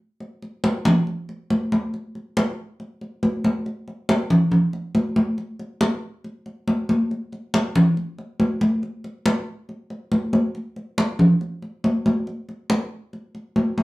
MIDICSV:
0, 0, Header, 1, 2, 480
1, 0, Start_track
1, 0, Tempo, 430725
1, 234, Time_signature, 4, 2, 24, 8
1, 15412, End_track
2, 0, Start_track
2, 0, Title_t, "Drums"
2, 227, Note_on_c, 9, 63, 35
2, 339, Note_off_c, 9, 63, 0
2, 473, Note_on_c, 9, 63, 35
2, 584, Note_off_c, 9, 63, 0
2, 710, Note_on_c, 9, 63, 94
2, 822, Note_off_c, 9, 63, 0
2, 950, Note_on_c, 9, 63, 101
2, 950, Note_on_c, 9, 64, 86
2, 1062, Note_off_c, 9, 63, 0
2, 1062, Note_off_c, 9, 64, 0
2, 1193, Note_on_c, 9, 63, 35
2, 1304, Note_off_c, 9, 63, 0
2, 1436, Note_on_c, 9, 63, 33
2, 1548, Note_off_c, 9, 63, 0
2, 1676, Note_on_c, 9, 63, 83
2, 1788, Note_off_c, 9, 63, 0
2, 1918, Note_on_c, 9, 63, 86
2, 2030, Note_off_c, 9, 63, 0
2, 2159, Note_on_c, 9, 63, 38
2, 2270, Note_off_c, 9, 63, 0
2, 2398, Note_on_c, 9, 63, 34
2, 2510, Note_off_c, 9, 63, 0
2, 2640, Note_on_c, 9, 63, 96
2, 2751, Note_off_c, 9, 63, 0
2, 3119, Note_on_c, 9, 63, 34
2, 3230, Note_off_c, 9, 63, 0
2, 3358, Note_on_c, 9, 63, 34
2, 3470, Note_off_c, 9, 63, 0
2, 3598, Note_on_c, 9, 63, 78
2, 3709, Note_off_c, 9, 63, 0
2, 3838, Note_on_c, 9, 63, 89
2, 3950, Note_off_c, 9, 63, 0
2, 4079, Note_on_c, 9, 63, 37
2, 4190, Note_off_c, 9, 63, 0
2, 4320, Note_on_c, 9, 63, 38
2, 4431, Note_off_c, 9, 63, 0
2, 4558, Note_on_c, 9, 63, 106
2, 4669, Note_off_c, 9, 63, 0
2, 4796, Note_on_c, 9, 64, 93
2, 4907, Note_off_c, 9, 64, 0
2, 5031, Note_on_c, 9, 63, 35
2, 5031, Note_on_c, 9, 64, 72
2, 5143, Note_off_c, 9, 63, 0
2, 5143, Note_off_c, 9, 64, 0
2, 5273, Note_on_c, 9, 63, 34
2, 5385, Note_off_c, 9, 63, 0
2, 5513, Note_on_c, 9, 63, 81
2, 5624, Note_off_c, 9, 63, 0
2, 5752, Note_on_c, 9, 63, 89
2, 5864, Note_off_c, 9, 63, 0
2, 5994, Note_on_c, 9, 63, 36
2, 6105, Note_off_c, 9, 63, 0
2, 6235, Note_on_c, 9, 63, 38
2, 6347, Note_off_c, 9, 63, 0
2, 6472, Note_on_c, 9, 63, 99
2, 6583, Note_off_c, 9, 63, 0
2, 6958, Note_on_c, 9, 63, 36
2, 7070, Note_off_c, 9, 63, 0
2, 7197, Note_on_c, 9, 63, 34
2, 7309, Note_off_c, 9, 63, 0
2, 7439, Note_on_c, 9, 63, 84
2, 7550, Note_off_c, 9, 63, 0
2, 7680, Note_on_c, 9, 63, 92
2, 7792, Note_off_c, 9, 63, 0
2, 7925, Note_on_c, 9, 63, 36
2, 8036, Note_off_c, 9, 63, 0
2, 8163, Note_on_c, 9, 63, 34
2, 8274, Note_off_c, 9, 63, 0
2, 8401, Note_on_c, 9, 63, 107
2, 8513, Note_off_c, 9, 63, 0
2, 8642, Note_on_c, 9, 64, 94
2, 8754, Note_off_c, 9, 64, 0
2, 8882, Note_on_c, 9, 63, 38
2, 8993, Note_off_c, 9, 63, 0
2, 9121, Note_on_c, 9, 63, 35
2, 9232, Note_off_c, 9, 63, 0
2, 9357, Note_on_c, 9, 63, 89
2, 9468, Note_off_c, 9, 63, 0
2, 9597, Note_on_c, 9, 63, 88
2, 9709, Note_off_c, 9, 63, 0
2, 9838, Note_on_c, 9, 63, 34
2, 9950, Note_off_c, 9, 63, 0
2, 10077, Note_on_c, 9, 63, 37
2, 10189, Note_off_c, 9, 63, 0
2, 10315, Note_on_c, 9, 63, 99
2, 10426, Note_off_c, 9, 63, 0
2, 10797, Note_on_c, 9, 63, 36
2, 10908, Note_off_c, 9, 63, 0
2, 11036, Note_on_c, 9, 63, 36
2, 11147, Note_off_c, 9, 63, 0
2, 11273, Note_on_c, 9, 63, 84
2, 11385, Note_off_c, 9, 63, 0
2, 11512, Note_on_c, 9, 63, 88
2, 11624, Note_off_c, 9, 63, 0
2, 11755, Note_on_c, 9, 63, 39
2, 11866, Note_off_c, 9, 63, 0
2, 11995, Note_on_c, 9, 63, 38
2, 12106, Note_off_c, 9, 63, 0
2, 12235, Note_on_c, 9, 63, 96
2, 12346, Note_off_c, 9, 63, 0
2, 12472, Note_on_c, 9, 64, 85
2, 12583, Note_off_c, 9, 64, 0
2, 12715, Note_on_c, 9, 63, 37
2, 12826, Note_off_c, 9, 63, 0
2, 12954, Note_on_c, 9, 63, 34
2, 13065, Note_off_c, 9, 63, 0
2, 13196, Note_on_c, 9, 63, 85
2, 13307, Note_off_c, 9, 63, 0
2, 13438, Note_on_c, 9, 63, 92
2, 13549, Note_off_c, 9, 63, 0
2, 13675, Note_on_c, 9, 63, 36
2, 13786, Note_off_c, 9, 63, 0
2, 13915, Note_on_c, 9, 63, 33
2, 14026, Note_off_c, 9, 63, 0
2, 14149, Note_on_c, 9, 63, 96
2, 14261, Note_off_c, 9, 63, 0
2, 14634, Note_on_c, 9, 63, 37
2, 14745, Note_off_c, 9, 63, 0
2, 14873, Note_on_c, 9, 63, 33
2, 14985, Note_off_c, 9, 63, 0
2, 15110, Note_on_c, 9, 63, 88
2, 15222, Note_off_c, 9, 63, 0
2, 15352, Note_on_c, 9, 63, 86
2, 15412, Note_off_c, 9, 63, 0
2, 15412, End_track
0, 0, End_of_file